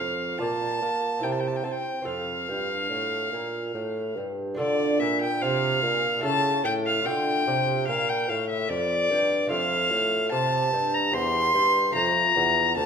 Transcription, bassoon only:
0.00 F2
0.40 A#2
0.82 A#3
1.23 C3
1.65 C4
2.06 F2
2.48 G2
2.91 A2
3.32 A#2
3.74 A2
4.16 G2
4.58 D3
5.00 A#2
5.42 C3
5.82 A#2
6.24 C#3
6.65 A2
7.06 D3
7.47 C3
7.88 A#2
8.29 A2
8.70 F2
9.10 G2
9.50 F2
9.91 A2
10.32 C3
10.72 G2
11.13 E2
11.54 G2
11.95 F2
12.36 E2
12.76 D2

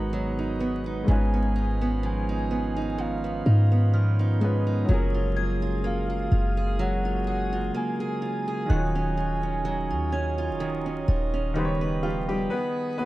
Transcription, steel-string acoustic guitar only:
Already playing: G#2 F#3 B3 D#4
0.13 F#3
0.39 D#4
0.60 B3
0.86 D#4
1.08 G#2
1.34 B3
1.56 D#4
1.81 B3
2.03 F3
2.29 D#4
2.51 B3
2.77 D#4
2.98 G#2
3.24 B3
3.46 D#4
3.72 B3
3.93 F3
4.19 D#4
4.41 B3
4.67 D#4
4.89 F#3
5.14 F4
5.36 G#4
5.62 F4
5.84 A#3
6.10 G#4
6.32 F4
6.57 G#4
6.79 F#3
7.05 F4
7.27 G#4
7.53 F4
7.74 A#3
8.00 G#4
8.22 F4
8.48 G#4
8.70 D#3
8.95 C#4
9.17 F4
9.43 C#4
9.65 F#3
9.91 F4
10.12 C#4
10.38 F4
10.60 D#3
10.86 C#4
11.08 F4
11.34 C#4
11.56 D#3
11.81 B4
12.03 G4
12.29 B4

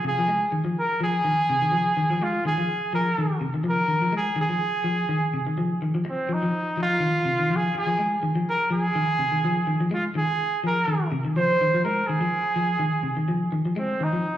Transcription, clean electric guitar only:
0.04 C3
0.18 F3
0.28 G#3
0.52 D#3
0.65 F3
1.00 F3
1.25 D#3
1.50 C3
1.62 D#3
1.72 F3
1.97 D#3
2.11 F3
2.22 G#3
2.45 D#3
2.58 F3
2.93 F3
3.18 D#3
3.41 C3
3.54 D#3
3.64 F3
3.88 D#3
4.02 F3
4.12 G#3
4.36 D#3
4.49 F3
4.84 F3
5.09 D#3
5.34 C3
5.47 D#3
5.58 F3
5.82 D#3
5.95 F3
6.05 muted clean electric guitar stroke
6.29 F3
6.43 F3
6.77 F3
7.00 D#3
7.25 C3
7.39 D#3
7.50 F3
7.75 muted clean electric guitar stroke
7.87 F3
7.99 G#3
8.23 D#3
8.35 F3
8.70 F3
8.95 D#3
9.19 C3
9.32 D#3
9.45 F3
9.67 D#3
9.81 F3
9.91 G#3
10.15 D#3
10.64 F3
10.88 D#3
11.12 C3
11.25 D#3
11.36 F3
11.61 D#3
11.74 F3
11.85 G#3
12.09 D#3
12.21 F3
12.56 F3
12.79 D#3
13.03 C3
13.17 D#3
13.28 F3
13.52 D#3
13.65 F3
13.76 G#3
14.00 D#3
14.13 F3

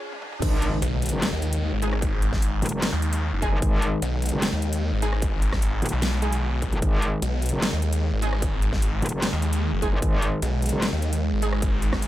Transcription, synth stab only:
1.82 G#3 D#4 G#4
3.42 G#3 D#4 G#4
5.02 G#3 D#4 G#4
6.22 G#3 D#4 G#4
8.22 G#3 D#4 G#4
9.82 G#3 D#4 G#4
11.42 G#3 D#4 G#4

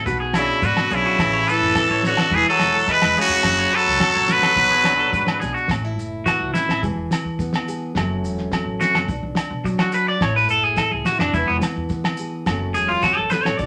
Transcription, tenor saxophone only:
0.37 C#3
0.65 D3
0.92 C#3
1.50 E3
2.07 D3
2.35 E3
2.49 F#3
2.90 G#3
3.18 C#3
3.73 F#3
4.32 F#3

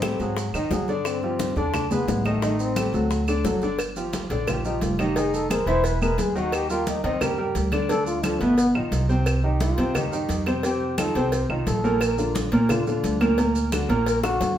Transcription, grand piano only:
0.03 G3 G4 A4
0.21 F#3 F#4 G#4
0.55 D#3 D#4 D#5
0.72 F#3 F#4 G#4
0.89 D3 D4 D5
1.23 F3 F4 G4
1.57 D3 D4 D5
1.91 G#3 G#4 B4
2.25 D#3 D#4 D#5
2.42 D#3 D#4 D#5
2.77 G3 G4 A4
2.94 F#3 F#4 A4
3.28 D3 D4 D5
3.46 F#3 F#4 A4
3.63 D3 D4 D5
3.96 F3 F4 G4
4.31 D3 D4 D5
4.48 F3 F4 G4
4.65 F3 F4 G4
4.99 D#3 D#4 D#5
5.16 D#3 D#4 D#5
5.50 G#3 G#4 C5
5.67 E3 E4 E5
6.02 G#3 G#4 B4
6.35 D#3 D#4 D#5
6.70 G3 G4 A#4
7.04 D#3 D#4 D#5
7.21 G3 G4 A#4
7.38 G3 G4 A#4
7.72 D3 D4 D5
7.90 D3 D4 D5
8.23 F3 F4 A4
8.40 B2 B3 B4
8.75 D#3 D#4 F4
9.09 C3 C4 C5
9.44 D#3 D#4 G4
9.78 C3 C4 C5
9.95 D#3 D#4 G4
10.12 D#3 D#4 G4
10.46 C3 C4 C5
10.64 C3 C4 C5
10.98 D#3 D#4 F4
11.16 C3 C4 C5
11.49 D#3 D#4 F4
11.84 A#2 A#3 A#4
12.18 D3 D4 F4
12.52 A#2 A#3 A#4
12.69 D3 D4 F4
12.87 D3 D4 F4
13.21 A#2 A#3 A#4
13.38 A#2 A#3 A#4
13.72 D3 D4 F#4
13.89 A#2 A#3 A#4
14.24 D3 D4 F#4

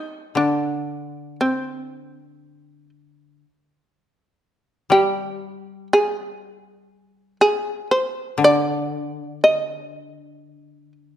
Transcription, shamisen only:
Already playing: D#4
0.37 D4
1.41 C4
4.92 G4
5.93 G#4
7.41 G#4
7.91 C5
8.44 D5
9.44 D#5

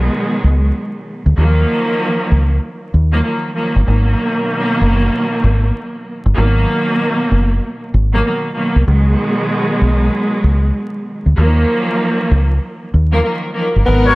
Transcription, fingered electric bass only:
0.44 C#2
1.26 D2
1.38 D#2
2.32 C#2
2.94 D#2
3.76 G1
3.88 G#1
4.81 F#1
5.44 G#1
6.26 G1
6.38 G#1
7.31 F#1
7.94 G#1
8.76 C2
8.88 C#2
9.81 B1
10.44 C#2
11.26 D2
11.38 D#2
12.31 C#2
12.94 D#2
13.76 G1
13.88 G#1

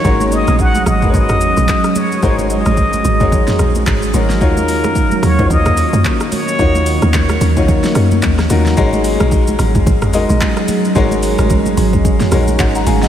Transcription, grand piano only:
0.04 G#3 D#4 F#4 A#4 C#5
1.02 G#3 D#4 F#4 A#4 B4
1.10 C#5
2.22 G#3 D#4 F#4 A#4 C5
2.30 C#5
3.20 G#3 D#4 F#4 A#4 C#5
4.14 G#3 D#4 F#4 A#4 C#5
4.41 D#3 D#4 F4 F#4 C#5
5.39 D#3 D#4 F4 F#4 C5
5.46 C#5
6.59 D#3 D#4 F4 F#4 C#5
7.56 D#3 D#4 F4 F#4 C#5
8.50 D#3 D#4 F4 F#4 A#4
8.77 G#3 D#4 F#4 A#4 C#5
10.14 G#3 D#4 F#4 A#4 D#5
10.95 G#3 D#4 F#4 A#4 C#5
12.32 G#3 D#4 F#4 A#4 C#5
12.60 D#5 F#5
12.75 F#5 A#5
12.87 F5 G#5
13.03 D#5 F#5

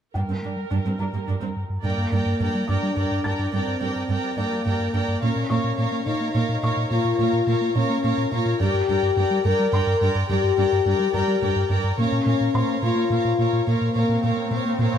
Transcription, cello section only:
0.15 G2
0.30 G2
0.44 G2
0.71 G2
0.86 G2
1.00 G2
1.14 G2
1.28 G2
1.42 G2
1.84 G2
2.12 G2
2.41 G2
2.69 G2
2.96 G2
3.25 G2
3.53 G2
3.81 G2
4.09 G2
4.37 G2
4.66 G2
4.94 G2
5.22 A#2
5.51 A#2
5.79 A#2
6.07 A#2
6.35 A#2
6.63 A#2
6.91 A#2
7.20 A#2
7.48 A#2
7.76 A#2
8.04 A#2
8.32 A#2
8.61 G2
8.89 G2
9.17 G2
9.45 G2
9.73 G2
10.01 G2
10.30 G2
10.58 G2
10.86 G2
11.14 G2
11.42 G2
11.70 G2
11.99 A#2
12.26 A#2
12.55 A#2
12.83 A#2
13.11 A#2
13.40 A#2
13.68 A#2
13.96 A#2
14.23 A#2
14.51 A#2
14.80 A#2

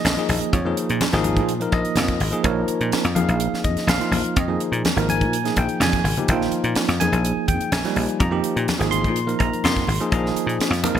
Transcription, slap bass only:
0.04 A#1
0.29 A#1
0.53 F2
0.90 A#2
1.13 G#1
1.37 A#2
1.72 A#1
1.98 F2
2.20 G#1
2.44 A#1
2.81 A#2
2.93 muted slap bass stroke
3.05 F2
3.28 A#1
3.53 muted slap bass stroke
3.64 F2
3.76 muted slap bass stroke
3.87 A#1
4.11 A#1
4.36 F2
4.72 A#2
4.96 G#1
5.21 A#2
5.57 A#1
5.80 F2
6.04 G#1
6.29 A#1
6.64 A#2
6.76 muted slap bass stroke
6.88 F2
7.12 A#1
7.37 muted slap bass stroke
7.48 F2
7.61 muted slap bass stroke
7.72 A#1
7.96 A#1
8.20 F2
8.56 A#2
8.80 G#1
9.04 A#2
9.40 A#1
9.64 F2
9.88 G#1
10.12 A#1
10.47 A#2
10.59 muted slap bass stroke
10.70 F2
10.94 A#1

